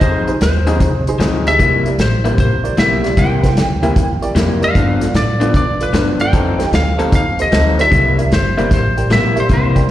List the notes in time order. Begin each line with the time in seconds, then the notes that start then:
0.01 F2 F3 C4 D#4 G#4 C5, kick, closed hi-hat
0.27 D#4 G4 G#4 C5, muted upright bass stroke, closed hi-hat
0.41 D#2 C5, snare, closed hi-hat
0.67 F3 C4 D#4 G4 G#4 D#5, closed hi-hat
0.80 C2, kick, closed hi-hat
1.07 D#4 G4 G#4 C5, closed hi-hat
1.19 D2 F3 C4 D#4 G#4, snare, closed hi-hat
1.47 D#4 G4 G#4 D#5 E5, snare, closed hi-hat
1.58 C2 C3 G3 A#3 E4, kick, closed hi-hat
1.86 E4 G4 A#4 D5, closed hi-hat
1.98 A1 C5, snare, closed hi-hat
2.24 C3 G3 A#3 E4 G4 A#4 C5, closed hi-hat
2.38 A#1 C5, kick, closed hi-hat
2.64 E4 G4 A#4 D5, muted upright bass stroke, closed hi-hat
2.77 B1 C3 G3 A#3 E4 E5, snare, closed hi-hat
3.04 E4 G4 A#4 D5, snare, closed hi-hat
3.17 C2 C3 G3 A#3 E4 G5, kick, closed hi-hat
3.43 E4 G4 A#4 C5, kick, snare, closed hi-hat
3.56 D2, snare, closed hi-hat
3.82 C3 G3 A#3 E4 G4 A#4 E5, closed hi-hat
3.96 E2, kick, closed hi-hat
4.22 E4 G4 A#4 D5, closed hi-hat
4.35 F2 C3 G3 A#3 E4, snare, closed hi-hat
4.61 E4 G4 A#4 D5 F5, closed hi-hat
4.75 G2 F3 B3 D4, kick, closed hi-hat
5.01 F4 A4 B4 D5, snare, closed hi-hat
5.14 A2 D5, snare, closed hi-hat
5.40 G2 F3 B3 D4 F4 A4 B4 D5, closed hi-hat
5.54 B2 D5, kick, closed hi-hat
5.80 F4 A4 B4 D5, closed hi-hat
5.93 G2 F3 B3 D4, snare, closed hi-hat
6.20 F4 A4 B4 D5 G5, closed hi-hat
6.33 F2 F3 C4 D#4 A4, kick, closed hi-hat
6.59 G4 A4 C5 D#5, snare, closed hi-hat
6.71 D2 F5, snare, closed hi-hat
6.98 F3 C4 D#4 G4 A4 C5 D#5, closed hi-hat
7.12 D#2 F5, kick, closed hi-hat
7.39 G4 A4 C5 D#5, closed hi-hat
7.52 D2 F3 C4 D#4 A4, snare, closed hi-hat
7.79 G4 A4 C5 D5 E5, snare, closed hi-hat
7.91 C2 C3 G3 A#3 E4, kick, closed hi-hat
8.18 G4 A#4 D5 E5, closed hi-hat
8.31 G1 C5, snare, closed hi-hat
8.57 C3 G3 A#3 E4 G4 A#4 D5 E5, closed hi-hat
8.71 A1 C5, kick, snare, closed hi-hat
8.97 G4 A#4 D5 G5, closed hi-hat
9.10 A#1 C3 G3 A#3 E4 E5, snare, closed hi-hat
9.36 G4 A#4 D5 E5, closed hi-hat
9.40 C5
9.49 C2 C3 G3 A#3 E4, kick, closed hi-hat
9.53 C5
9.75 G4 A#4 D5 G5, kick, closed hi-hat